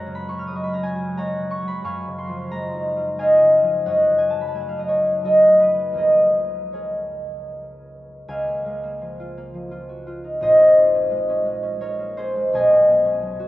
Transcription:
0.00 1.83 F#2 medium
0.00 0.50 G#3 medium
0.00 1.47 A#3 soft
0.00 0.72 C#4 medium
0.00 3.02 G#4 medium
0.00 1.86 A#4 medium
0.00 1.17 C#5 medium
0.00 1.17 F#5 medium
0.00 0.82 G#5 medium
0.00 0.72 A#5 loud
0.06 1.38 C#3 medium
0.15 0.39 B5 medium
0.29 1.61 F#3 medium
0.29 0.46 C#6 medium
0.39 0.53 F6 medium
0.47 0.60 D#6 medium
0.51 1.16 G#3 medium
0.51 0.69 C#6 medium
0.64 0.80 B5 medium
0.73 4.63 C#4 medium
0.73 0.91 A#5 medium
0.83 1.84 G#5 loud
0.95 1.86 F#4 medium
1.17 2.50 G#3 medium
1.17 3.86 C#5 medium
1.17 1.86 F#5 medium
1.17 1.86 A#5 loud
1.39 1.85 C#3 soft
1.51 1.78 C#6 loud
1.62 1.86 F#3 medium
1.68 1.95 B5 medium
1.84 3.85 F#2 medium
1.84 3.19 F5 medium
1.84 3.17 G#5 medium
1.84 5.75 C#6 loud
2.07 3.40 C#3 medium
2.18 3.90 C6 loud
2.28 3.62 F3 medium
2.51 3.17 G#3 medium
2.51 3.66 A#5 medium
2.74 4.76 D#4 soft
2.96 3.89 F4 soft
3.18 3.89 G#3 soft
3.18 3.86 D#5 medium
3.18 3.90 F5 medium
3.18 3.89 G#5 medium
3.41 3.89 C#3 soft
3.63 3.89 F3 soft
3.86 6.00 F#2 medium
3.86 4.87 C#5 medium
3.86 4.78 D#5 medium
3.86 4.59 F#5 medium
4.10 5.48 C#3 soft
4.18 4.40 G#5 medium
4.30 5.23 F#3 soft
4.30 4.47 A5 medium
4.41 4.54 B5 medium
4.48 4.60 A5 medium
4.55 4.99 A3 soft
4.55 4.67 G#5 medium
4.60 4.75 F#5 medium
4.69 4.85 F5 medium
4.77 6.00 D#4 soft
4.77 4.96 D#5 medium
4.88 6.72 C#5 medium
5.00 6.00 A3 soft
5.24 5.71 F#3 soft
5.24 6.01 F#4 medium
5.24 6.01 A4 medium
5.24 5.96 D#5 medium
5.49 6.00 C#3 soft
5.60 6.23 B4 medium
5.72 6.00 F#3 soft
5.93 8.27 C#2 soft
5.93 9.00 F3 soft
5.93 8.46 A#3 soft
5.93 9.86 C#4 soft
5.97 6.73 G#4 soft
5.97 6.73 A#4 soft
5.97 7.25 D#5 medium
6.73 10.64 G#4 soft
6.73 10.64 A#4 soft
6.73 10.63 C#5 medium
8.28 10.43 C#2 medium
8.28 12.20 F5 medium
8.28 12.19 G#5 medium
8.48 8.82 A#3 soft
8.65 8.96 G#3 soft
8.83 9.36 A#3 soft
9.01 9.53 F3 soft
9.20 9.70 F4 medium
9.37 11.97 A#3 soft
9.54 12.57 F3 soft
9.71 10.05 F4 soft
9.89 10.18 F#4 soft
10.07 12.57 F4 medium
10.24 13.48 D#4 soft
10.41 12.57 A#1 medium
10.41 12.57 A#2 medium
10.41 12.16 C5 medium
10.41 12.54 D#5 medium
10.59 10.93 C#4 soft
10.77 11.06 C4 soft
10.94 11.28 C#4 soft
11.10 11.44 G#3 medium
11.29 11.62 C#4 soft
11.46 11.79 G#3 soft
11.63 12.17 C#4 medium
11.80 12.35 G#3 soft
11.80 12.58 A#4 medium
11.80 13.48 C#5 medium
11.99 12.30 A#3 soft
12.17 12.70 C#4 soft
12.17 13.48 G#4 medium
12.17 12.57 C5 medium
12.36 13.48 G#3 soft
12.53 13.48 B1 medium
12.53 13.48 B2 medium
12.53 13.48 D#5 medium
12.53 13.48 G#5 medium
12.71 13.04 C#4 medium
12.88 13.17 B3 soft
13.05 13.48 C#4 medium
13.22 13.48 F#3 medium
13.40 13.48 F#4 medium

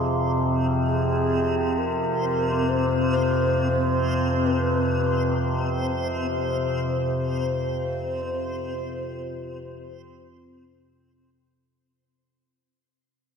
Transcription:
0.00 11.94 F2 medium
0.00 11.93 C3 medium
0.00 11.86 C4 medium
0.00 0.58 G#4 medium
0.87 1.80 G#4 loud
1.78 2.70 A#4 loud
2.69 3.11 C5 loud
3.12 4.47 C5 loud
4.46 4.54 B4 medium
4.53 4.61 C5 medium
4.59 5.55 B4 loud
5.82 10.86 C5 loud

